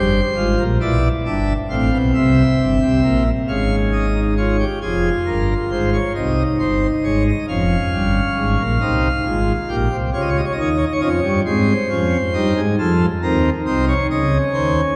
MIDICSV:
0, 0, Header, 1, 2, 480
1, 0, Start_track
1, 0, Tempo, 888889
1, 1159, Time_signature, 6, 3, 24, 8
1, 4043, Tempo, 881057
1, 8113, End_track
2, 0, Start_track
2, 0, Title_t, "Pipe organ"
2, 0, Program_c, 0, 19
2, 0, Note_on_c, 0, 31, 85
2, 0, Note_on_c, 0, 43, 85
2, 0, Note_on_c, 0, 67, 68
2, 0, Note_on_c, 0, 72, 75
2, 110, Note_off_c, 0, 31, 0
2, 110, Note_off_c, 0, 43, 0
2, 110, Note_off_c, 0, 67, 0
2, 197, Note_on_c, 0, 44, 80
2, 198, Note_on_c, 0, 32, 76
2, 198, Note_on_c, 0, 65, 67
2, 301, Note_off_c, 0, 44, 0
2, 302, Note_off_c, 0, 32, 0
2, 317, Note_on_c, 0, 34, 77
2, 318, Note_on_c, 0, 46, 76
2, 340, Note_off_c, 0, 72, 0
2, 347, Note_off_c, 0, 65, 0
2, 421, Note_off_c, 0, 34, 0
2, 422, Note_off_c, 0, 46, 0
2, 436, Note_on_c, 0, 47, 77
2, 437, Note_on_c, 0, 35, 79
2, 437, Note_on_c, 0, 64, 64
2, 437, Note_on_c, 0, 74, 60
2, 586, Note_off_c, 0, 35, 0
2, 586, Note_off_c, 0, 47, 0
2, 586, Note_off_c, 0, 74, 0
2, 587, Note_off_c, 0, 64, 0
2, 676, Note_on_c, 0, 43, 71
2, 677, Note_on_c, 0, 31, 70
2, 677, Note_on_c, 0, 62, 61
2, 677, Note_on_c, 0, 76, 59
2, 826, Note_off_c, 0, 31, 0
2, 826, Note_off_c, 0, 43, 0
2, 826, Note_off_c, 0, 62, 0
2, 826, Note_off_c, 0, 76, 0
2, 916, Note_on_c, 0, 60, 65
2, 917, Note_on_c, 0, 33, 77
2, 917, Note_on_c, 0, 45, 76
2, 917, Note_on_c, 0, 77, 64
2, 1021, Note_off_c, 0, 33, 0
2, 1021, Note_off_c, 0, 45, 0
2, 1038, Note_on_c, 0, 35, 73
2, 1038, Note_on_c, 0, 47, 71
2, 1066, Note_off_c, 0, 77, 0
2, 1142, Note_off_c, 0, 35, 0
2, 1142, Note_off_c, 0, 47, 0
2, 1158, Note_on_c, 0, 36, 77
2, 1158, Note_on_c, 0, 76, 66
2, 1159, Note_on_c, 0, 48, 79
2, 1307, Note_off_c, 0, 36, 0
2, 1307, Note_off_c, 0, 48, 0
2, 1400, Note_on_c, 0, 31, 73
2, 1400, Note_on_c, 0, 43, 69
2, 1503, Note_off_c, 0, 31, 0
2, 1503, Note_off_c, 0, 43, 0
2, 1519, Note_on_c, 0, 36, 69
2, 1519, Note_on_c, 0, 48, 71
2, 1622, Note_off_c, 0, 48, 0
2, 1623, Note_off_c, 0, 36, 0
2, 1637, Note_on_c, 0, 46, 71
2, 1639, Note_on_c, 0, 34, 75
2, 1744, Note_off_c, 0, 60, 0
2, 1778, Note_off_c, 0, 76, 0
2, 1787, Note_off_c, 0, 46, 0
2, 1788, Note_off_c, 0, 34, 0
2, 1879, Note_on_c, 0, 32, 66
2, 1879, Note_on_c, 0, 61, 54
2, 1879, Note_on_c, 0, 77, 61
2, 1880, Note_on_c, 0, 44, 63
2, 2028, Note_off_c, 0, 77, 0
2, 2119, Note_on_c, 0, 75, 50
2, 2190, Note_off_c, 0, 61, 0
2, 2239, Note_on_c, 0, 63, 51
2, 2269, Note_off_c, 0, 75, 0
2, 2344, Note_off_c, 0, 63, 0
2, 2360, Note_on_c, 0, 73, 53
2, 2361, Note_on_c, 0, 65, 53
2, 2465, Note_off_c, 0, 65, 0
2, 2481, Note_on_c, 0, 67, 53
2, 2502, Note_off_c, 0, 32, 0
2, 2502, Note_off_c, 0, 44, 0
2, 2510, Note_off_c, 0, 73, 0
2, 2585, Note_off_c, 0, 67, 0
2, 2598, Note_on_c, 0, 29, 48
2, 2598, Note_on_c, 0, 68, 63
2, 2599, Note_on_c, 0, 41, 52
2, 2599, Note_on_c, 0, 65, 57
2, 2749, Note_off_c, 0, 29, 0
2, 2749, Note_off_c, 0, 68, 0
2, 2750, Note_off_c, 0, 41, 0
2, 2841, Note_on_c, 0, 31, 52
2, 2841, Note_on_c, 0, 43, 50
2, 2841, Note_on_c, 0, 70, 57
2, 2991, Note_off_c, 0, 31, 0
2, 2991, Note_off_c, 0, 43, 0
2, 2991, Note_off_c, 0, 70, 0
2, 3081, Note_on_c, 0, 72, 60
2, 3082, Note_on_c, 0, 32, 49
2, 3082, Note_on_c, 0, 44, 50
2, 3186, Note_off_c, 0, 72, 0
2, 3202, Note_on_c, 0, 73, 57
2, 3221, Note_off_c, 0, 65, 0
2, 3231, Note_off_c, 0, 32, 0
2, 3231, Note_off_c, 0, 44, 0
2, 3306, Note_off_c, 0, 73, 0
2, 3320, Note_on_c, 0, 36, 50
2, 3320, Note_on_c, 0, 48, 53
2, 3320, Note_on_c, 0, 63, 49
2, 3320, Note_on_c, 0, 75, 63
2, 3470, Note_off_c, 0, 36, 0
2, 3470, Note_off_c, 0, 48, 0
2, 3470, Note_off_c, 0, 75, 0
2, 3560, Note_on_c, 0, 31, 46
2, 3560, Note_on_c, 0, 43, 52
2, 3560, Note_on_c, 0, 72, 55
2, 3710, Note_off_c, 0, 31, 0
2, 3710, Note_off_c, 0, 43, 0
2, 3710, Note_off_c, 0, 72, 0
2, 3799, Note_on_c, 0, 32, 54
2, 3801, Note_on_c, 0, 44, 57
2, 3801, Note_on_c, 0, 73, 60
2, 3906, Note_off_c, 0, 73, 0
2, 3923, Note_on_c, 0, 75, 63
2, 3941, Note_off_c, 0, 63, 0
2, 3950, Note_off_c, 0, 32, 0
2, 3951, Note_off_c, 0, 44, 0
2, 4027, Note_off_c, 0, 75, 0
2, 4039, Note_on_c, 0, 29, 60
2, 4039, Note_on_c, 0, 41, 65
2, 4040, Note_on_c, 0, 61, 58
2, 4040, Note_on_c, 0, 77, 59
2, 4190, Note_off_c, 0, 29, 0
2, 4190, Note_off_c, 0, 41, 0
2, 4283, Note_on_c, 0, 31, 61
2, 4283, Note_on_c, 0, 43, 66
2, 4433, Note_off_c, 0, 31, 0
2, 4433, Note_off_c, 0, 43, 0
2, 4522, Note_on_c, 0, 32, 65
2, 4523, Note_on_c, 0, 44, 62
2, 4627, Note_off_c, 0, 32, 0
2, 4628, Note_off_c, 0, 44, 0
2, 4642, Note_on_c, 0, 34, 62
2, 4644, Note_on_c, 0, 46, 64
2, 4663, Note_off_c, 0, 61, 0
2, 4747, Note_off_c, 0, 34, 0
2, 4748, Note_off_c, 0, 46, 0
2, 4763, Note_on_c, 0, 36, 58
2, 4763, Note_on_c, 0, 48, 67
2, 4763, Note_on_c, 0, 63, 55
2, 4912, Note_off_c, 0, 63, 0
2, 4913, Note_off_c, 0, 36, 0
2, 4913, Note_off_c, 0, 48, 0
2, 5003, Note_on_c, 0, 32, 59
2, 5003, Note_on_c, 0, 44, 62
2, 5004, Note_on_c, 0, 65, 56
2, 5152, Note_off_c, 0, 32, 0
2, 5152, Note_off_c, 0, 44, 0
2, 5153, Note_off_c, 0, 65, 0
2, 5242, Note_on_c, 0, 46, 67
2, 5243, Note_on_c, 0, 34, 66
2, 5243, Note_on_c, 0, 67, 59
2, 5280, Note_off_c, 0, 77, 0
2, 5346, Note_off_c, 0, 46, 0
2, 5347, Note_off_c, 0, 34, 0
2, 5362, Note_on_c, 0, 48, 66
2, 5363, Note_on_c, 0, 36, 64
2, 5392, Note_off_c, 0, 67, 0
2, 5466, Note_off_c, 0, 36, 0
2, 5466, Note_off_c, 0, 48, 0
2, 5484, Note_on_c, 0, 37, 73
2, 5484, Note_on_c, 0, 49, 73
2, 5484, Note_on_c, 0, 65, 66
2, 5484, Note_on_c, 0, 73, 55
2, 5527, Note_on_c, 0, 75, 52
2, 5528, Note_off_c, 0, 73, 0
2, 5570, Note_off_c, 0, 75, 0
2, 5570, Note_on_c, 0, 73, 55
2, 5612, Note_on_c, 0, 75, 52
2, 5614, Note_off_c, 0, 73, 0
2, 5632, Note_off_c, 0, 49, 0
2, 5633, Note_off_c, 0, 37, 0
2, 5633, Note_off_c, 0, 65, 0
2, 5655, Note_on_c, 0, 73, 54
2, 5657, Note_off_c, 0, 75, 0
2, 5698, Note_on_c, 0, 75, 53
2, 5700, Note_off_c, 0, 73, 0
2, 5722, Note_on_c, 0, 39, 75
2, 5722, Note_on_c, 0, 51, 75
2, 5723, Note_on_c, 0, 63, 65
2, 5741, Note_on_c, 0, 73, 60
2, 5743, Note_off_c, 0, 75, 0
2, 5786, Note_off_c, 0, 73, 0
2, 5786, Note_on_c, 0, 75, 62
2, 5828, Note_on_c, 0, 73, 57
2, 5831, Note_off_c, 0, 75, 0
2, 5872, Note_off_c, 0, 39, 0
2, 5872, Note_off_c, 0, 51, 0
2, 5872, Note_off_c, 0, 63, 0
2, 5873, Note_on_c, 0, 75, 52
2, 5874, Note_off_c, 0, 73, 0
2, 5916, Note_on_c, 0, 73, 53
2, 5918, Note_off_c, 0, 75, 0
2, 5959, Note_on_c, 0, 75, 51
2, 5960, Note_on_c, 0, 53, 77
2, 5961, Note_off_c, 0, 73, 0
2, 5961, Note_on_c, 0, 41, 75
2, 5961, Note_on_c, 0, 61, 64
2, 6002, Note_on_c, 0, 73, 69
2, 6005, Note_off_c, 0, 75, 0
2, 6065, Note_off_c, 0, 53, 0
2, 6066, Note_off_c, 0, 41, 0
2, 6081, Note_on_c, 0, 43, 71
2, 6081, Note_on_c, 0, 55, 66
2, 6111, Note_off_c, 0, 61, 0
2, 6175, Note_off_c, 0, 73, 0
2, 6186, Note_off_c, 0, 55, 0
2, 6187, Note_off_c, 0, 43, 0
2, 6204, Note_on_c, 0, 44, 69
2, 6204, Note_on_c, 0, 56, 66
2, 6204, Note_on_c, 0, 60, 58
2, 6204, Note_on_c, 0, 72, 59
2, 6354, Note_off_c, 0, 44, 0
2, 6354, Note_off_c, 0, 56, 0
2, 6354, Note_off_c, 0, 60, 0
2, 6445, Note_on_c, 0, 41, 67
2, 6445, Note_on_c, 0, 53, 72
2, 6445, Note_on_c, 0, 61, 62
2, 6595, Note_off_c, 0, 41, 0
2, 6595, Note_off_c, 0, 53, 0
2, 6595, Note_off_c, 0, 61, 0
2, 6685, Note_on_c, 0, 43, 73
2, 6686, Note_on_c, 0, 55, 67
2, 6686, Note_on_c, 0, 63, 61
2, 6790, Note_off_c, 0, 43, 0
2, 6790, Note_off_c, 0, 55, 0
2, 6806, Note_on_c, 0, 44, 71
2, 6807, Note_on_c, 0, 56, 69
2, 6826, Note_off_c, 0, 72, 0
2, 6836, Note_off_c, 0, 63, 0
2, 6910, Note_off_c, 0, 44, 0
2, 6911, Note_off_c, 0, 56, 0
2, 6928, Note_on_c, 0, 53, 67
2, 6929, Note_on_c, 0, 41, 64
2, 6929, Note_on_c, 0, 65, 67
2, 6929, Note_on_c, 0, 69, 75
2, 7077, Note_off_c, 0, 41, 0
2, 7077, Note_off_c, 0, 53, 0
2, 7077, Note_off_c, 0, 69, 0
2, 7078, Note_off_c, 0, 65, 0
2, 7167, Note_on_c, 0, 39, 67
2, 7168, Note_on_c, 0, 60, 67
2, 7169, Note_on_c, 0, 51, 69
2, 7169, Note_on_c, 0, 70, 76
2, 7316, Note_off_c, 0, 39, 0
2, 7317, Note_off_c, 0, 51, 0
2, 7317, Note_off_c, 0, 60, 0
2, 7317, Note_off_c, 0, 70, 0
2, 7406, Note_on_c, 0, 36, 66
2, 7406, Note_on_c, 0, 63, 62
2, 7406, Note_on_c, 0, 72, 71
2, 7407, Note_on_c, 0, 48, 70
2, 7510, Note_off_c, 0, 72, 0
2, 7525, Note_on_c, 0, 73, 74
2, 7555, Note_off_c, 0, 36, 0
2, 7555, Note_off_c, 0, 48, 0
2, 7555, Note_off_c, 0, 63, 0
2, 7629, Note_off_c, 0, 73, 0
2, 7647, Note_on_c, 0, 75, 67
2, 7648, Note_on_c, 0, 37, 61
2, 7648, Note_on_c, 0, 49, 62
2, 7649, Note_on_c, 0, 61, 60
2, 7796, Note_off_c, 0, 37, 0
2, 7796, Note_off_c, 0, 49, 0
2, 7796, Note_off_c, 0, 75, 0
2, 7883, Note_on_c, 0, 39, 61
2, 7883, Note_on_c, 0, 72, 67
2, 7884, Note_on_c, 0, 51, 64
2, 8033, Note_off_c, 0, 39, 0
2, 8033, Note_off_c, 0, 51, 0
2, 8033, Note_off_c, 0, 72, 0
2, 8113, Note_off_c, 0, 61, 0
2, 8113, End_track
0, 0, End_of_file